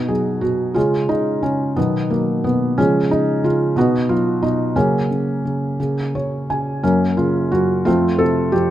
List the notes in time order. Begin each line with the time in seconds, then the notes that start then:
Already playing: B2 B3 D#4 F#4
0.08 F#3 G#4
0.41 B2 F#4
0.74 C#3 G#3 C#4 F4
1.09 C#3 D#4
1.43 C#3 C#4
1.76 B2 D#3 F#3 B3
2.10 F#3 A#3
2.44 B2 B3
2.78 C#3 F3 G#3 C#4
3.11 C#3 D#4
3.44 C#3 F4
3.76 B2 B3 D#4 F#4
4.09 F#3 F4
4.42 B2 D#4
4.76 C#3 F#3 A#3 C#4
5.11 C#3
5.45 C#3
5.80 C#3
6.15 C#3 C#5
6.50 C#3 G#5
6.83 F#2 F#3 A#3 C#4
7.17 C#3 F4
7.52 F#2 F#4
7.85 F2 A3 C4 F4
8.18 C3 A4
8.52 F2 G4